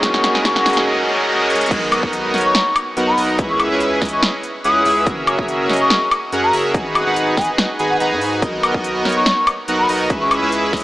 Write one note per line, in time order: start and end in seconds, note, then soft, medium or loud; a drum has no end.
0.00 0.86 G#2 medium
0.00 0.41 D#3 loud
0.00 0.86 D#3 medium
0.00 0.42 G#3 medium
0.00 0.43 A#3 medium
0.00 0.32 C#4 medium
0.00 0.44 C#4 medium
0.00 0.32 F#4 medium
0.00 0.86 F#4 medium
0.00 0.32 G#4 medium
0.00 0.32 A#4 medium
0.00 0.32 D#5 loud
0.00 0.86 B5 medium
0.00 0.35 C#6 medium
0.00 kick loud
0.00 snare loud
0.00 closed hi-hat medium
0.00 riser medium
0.05 0.44 F#4 loud
0.14 snare medium
0.24 snare medium
0.24 closed hi-hat medium
0.35 0.43 C#4 loud
0.35 0.43 F#4 medium
0.35 0.43 G#4 medium
0.35 0.43 A#4 medium
0.35 0.43 D#5 loud
0.35 snare medium
0.43 0.84 D#3 loud
0.43 0.85 G#3 medium
0.43 0.85 A#3 loud
0.43 0.74 C#4 medium
0.43 0.86 C#4 medium
0.43 0.74 F#4 medium
0.43 0.86 F#4 loud
0.43 0.74 G#4 medium
0.43 0.74 A#4 medium
0.43 0.74 D#5 medium
0.43 0.77 C#6 medium
0.43 kick loud
0.43 snare loud
0.43 closed hi-hat medium
0.56 snare medium
0.66 snare loud
0.66 closed hi-hat medium
0.66 open hi-hat medium
0.73 0.85 C#4 loud
0.73 0.85 F#4 medium
0.73 0.85 G#4 medium
0.73 0.85 A#4 medium
0.73 0.85 D#5 loud
0.73 closed hi-hat medium
0.77 snare medium
0.87 1.06 C#4 medium
0.87 1.06 F#4 medium
0.87 1.06 G#4 medium
0.87 1.06 A#4 medium
0.87 1.06 D#5 loud
1.08 1.27 C#4 medium
1.08 1.27 F#4 medium
1.08 1.27 G#4 medium
1.08 1.27 A#4 medium
1.08 1.27 D#5 loud
1.29 1.48 C#4 medium
1.29 1.48 F#4 medium
1.29 1.48 G#4 medium
1.29 1.48 A#4 medium
1.29 1.48 D#5 loud
1.50 1.69 C#4 loud
1.50 1.69 F#4 medium
1.50 1.69 G#4 medium
1.50 1.69 A#4 medium
1.50 1.69 D#5 loud
1.50 closed hi-hat medium
1.55 closed hi-hat medium
1.61 closed hi-hat medium
1.66 closed hi-hat medium
1.71 2.01 B1 loud
1.71 2.00 B3 medium
1.71 2.00 D#4 medium
1.71 2.00 F#4 medium
1.71 2.00 A#4 medium
1.71 2.00 D#5 medium
1.71 kick loud
1.71 closed hi-hat medium
1.71 crash loud
1.92 closed hi-hat medium
1.92 high woodblock medium
2.03 2.32 B1 medium
2.03 2.31 B3 loud
2.03 2.31 D#4 medium
2.03 2.31 F#4 medium
2.03 2.31 A#4 medium
2.03 2.31 D#5 loud
2.03 kick medium
2.13 closed hi-hat medium
2.34 2.53 B1 medium
2.34 2.54 B3 medium
2.34 2.54 D#4 medium
2.34 2.54 F#4 medium
2.34 2.54 A#4 medium
2.34 2.54 C#5 medium
2.34 snare soft
2.34 closed hi-hat medium
2.38 closed hi-hat medium
2.41 closed hi-hat medium
2.45 2.76 C#6 medium
2.55 snare loud
2.55 closed hi-hat medium
2.76 closed hi-hat medium
2.76 high woodblock medium
2.97 3.16 B1 loud
2.97 3.15 B3 medium
2.97 3.15 D#4 medium
2.97 3.15 F#4 medium
2.97 3.15 A#4 medium
2.97 3.15 F#5 loud
2.97 closed hi-hat medium
3.08 3.19 B5 loud
3.18 3.40 B1 loud
3.18 3.36 B3 medium
3.18 3.36 D#4 medium
3.18 3.36 F#4 medium
3.18 3.36 A#4 medium
3.18 3.36 D#5 loud
3.18 open hi-hat medium
3.39 3.69 C#2 loud
3.39 3.68 C#4 medium
3.39 3.68 E4 medium
3.39 3.68 G#4 medium
3.39 3.68 B4 medium
3.39 3.68 E5 loud
3.39 kick loud
3.39 closed hi-hat medium
3.50 3.61 C#6 loud
3.60 closed hi-hat medium
3.60 high woodblock medium
3.71 4.00 C#2 medium
3.71 3.99 C#4 loud
3.71 3.99 E4 medium
3.71 3.99 G#4 medium
3.71 3.99 B4 medium
3.71 3.99 E5 loud
3.81 closed hi-hat medium
4.02 4.20 C#2 loud
4.02 4.22 C#4 medium
4.02 4.22 E4 medium
4.02 4.22 G#4 medium
4.02 4.22 B4 medium
4.02 4.22 D#5 loud
4.02 kick medium
4.02 snare soft
4.02 closed hi-hat medium
4.05 closed hi-hat medium
4.09 4.24 C#6 medium
4.09 closed hi-hat medium
4.23 snare loud
4.23 closed hi-hat medium
4.43 closed hi-hat medium
4.64 4.84 C#2 loud
4.64 4.83 C#4 medium
4.64 4.83 E4 medium
4.64 4.83 G#4 medium
4.64 4.83 B4 medium
4.64 4.83 F#5 loud
4.64 5.07 D#6 loud
4.64 closed hi-hat medium
4.85 5.08 C#2 loud
4.85 5.04 C#4 loud
4.85 5.04 E4 medium
4.85 5.04 G#4 medium
4.85 5.04 B4 medium
4.85 5.04 E5 loud
4.85 open hi-hat medium
5.06 5.36 F#1 loud
5.06 5.36 C#4 medium
5.06 5.36 F#4 medium
5.06 5.36 G#4 medium
5.06 5.36 A#4 medium
5.06 5.36 E5 loud
5.06 kick loud
5.06 closed hi-hat medium
5.27 closed hi-hat medium
5.27 high woodblock medium
5.39 5.68 F#1 medium
5.39 5.67 C#4 loud
5.39 5.67 F#4 medium
5.39 5.67 G#4 medium
5.39 5.67 A#4 medium
5.39 5.67 E5 loud
5.39 kick medium
5.48 closed hi-hat medium
5.69 5.88 F#1 medium
5.69 5.90 C#4 medium
5.69 5.90 F#4 medium
5.69 5.90 G#4 medium
5.69 5.90 A#4 medium
5.69 5.90 D#5 loud
5.69 snare soft
5.69 closed hi-hat soft
5.73 closed hi-hat medium
5.76 closed hi-hat medium
5.80 6.11 C#6 medium
5.90 snare loud
5.90 closed hi-hat medium
6.11 closed hi-hat medium
6.11 high woodblock medium
6.32 6.51 F#2 loud
6.32 6.51 C#4 medium
6.32 6.51 F#4 medium
6.32 6.51 G#4 medium
6.32 6.51 A#4 medium
6.32 6.51 F#5 loud
6.32 closed hi-hat medium
6.43 6.54 A#5 loud
6.53 6.76 F#1 loud
6.53 6.72 C#4 medium
6.53 6.72 F#4 medium
6.53 6.72 G#4 medium
6.53 6.72 A#4 medium
6.53 6.72 E5 loud
6.53 open hi-hat medium
6.74 7.04 G#1 loud
6.74 7.04 D#4 medium
6.74 7.04 F#4 medium
6.74 7.04 G#4 medium
6.74 7.04 B4 medium
6.74 7.04 F#5 loud
6.74 kick loud
6.74 closed hi-hat medium
6.95 closed hi-hat medium
6.95 high woodblock medium
7.06 7.35 G#1 medium
7.06 7.35 D#4 loud
7.06 7.35 F#4 medium
7.06 7.35 G#4 medium
7.06 7.35 B4 medium
7.06 7.35 F#5 loud
7.16 closed hi-hat medium
7.37 7.56 G#1 medium
7.37 7.58 D#4 medium
7.37 7.58 F#4 medium
7.37 7.58 G#4 medium
7.37 7.58 B4 medium
7.37 7.58 D#5 loud
7.37 7.49 G#5 loud
7.37 kick medium
7.37 snare soft
7.37 closed hi-hat soft
7.41 closed hi-hat medium
7.44 closed hi-hat medium
7.58 snare loud
7.58 closed hi-hat medium
7.79 7.98 G#1 loud
7.79 7.98 D#4 medium
7.79 7.98 F#4 medium
7.79 7.98 G#4 medium
7.79 7.98 B4 medium
7.79 7.98 G#5 medium
7.79 closed hi-hat medium
7.90 7.97 F#5 medium
8.00 8.13 G#1 loud
8.00 8.09 D#4 loud
8.00 8.09 F#4 medium
8.00 8.09 G#4 medium
8.00 8.09 B4 loud
8.00 8.07 F#5 medium
8.00 8.09 A#5 loud
8.00 closed hi-hat medium
8.11 8.44 G#2 medium
8.11 8.40 D#4 medium
8.11 8.40 F#4 medium
8.11 8.40 G#4 medium
8.11 8.40 B4 medium
8.11 8.40 G#5 medium
8.21 open hi-hat medium
8.42 8.72 B1 loud
8.42 8.72 B3 medium
8.42 8.72 D#4 medium
8.42 8.72 F#4 medium
8.42 8.72 A#4 medium
8.42 8.72 D#5 loud
8.42 kick loud
8.42 closed hi-hat medium
8.63 closed hi-hat medium
8.63 high woodblock medium
8.74 9.03 B1 loud
8.74 9.03 B3 loud
8.74 9.03 D#4 medium
8.74 9.03 F#4 medium
8.74 9.03 A#4 medium
8.74 9.03 D#5 loud
8.74 kick medium
8.84 closed hi-hat medium
9.05 9.24 B1 medium
9.05 9.26 B3 medium
9.05 9.26 D#4 medium
9.05 9.26 F#4 medium
9.05 9.26 A#4 medium
9.05 9.26 C#5 medium
9.05 snare soft
9.05 closed hi-hat soft
9.09 closed hi-hat medium
9.12 closed hi-hat medium
9.16 9.47 C#6 medium
9.26 snare loud
9.26 closed hi-hat medium
9.47 closed hi-hat medium
9.47 high woodblock medium
9.68 9.87 B1 loud
9.68 9.87 B3 medium
9.68 9.87 D#4 medium
9.68 9.87 F#4 medium
9.68 9.87 A#4 medium
9.68 9.87 F#5 loud
9.68 closed hi-hat medium
9.79 9.90 B5 medium
9.89 10.08 B1 loud
9.89 10.08 B3 medium
9.89 10.08 D#4 medium
9.89 10.08 F#4 medium
9.89 10.08 A#4 medium
9.89 10.08 D#5 loud
9.89 open hi-hat medium
10.10 10.40 C#2 loud
10.10 10.39 C#4 medium
10.10 10.40 E4 medium
10.10 10.39 G#4 medium
10.10 10.39 B4 medium
10.10 10.39 E5 loud
10.10 kick loud
10.10 closed hi-hat medium
10.21 10.32 C#6 loud
10.31 closed hi-hat medium
10.31 high woodblock medium
10.42 10.71 C#2 loud
10.42 10.71 C#4 loud
10.42 10.71 E4 medium
10.42 10.71 G#4 medium
10.42 10.71 B4 medium
10.42 10.71 E5 loud
10.52 closed hi-hat medium
10.73 10.84 C#2 loud
10.73 10.84 C#4 medium
10.73 10.84 E4 medium
10.73 10.84 G#4 medium
10.73 10.84 B4 medium
10.73 10.84 D#5 loud
10.73 kick medium
10.73 snare soft
10.73 closed hi-hat medium
10.77 closed hi-hat medium
10.80 closed hi-hat medium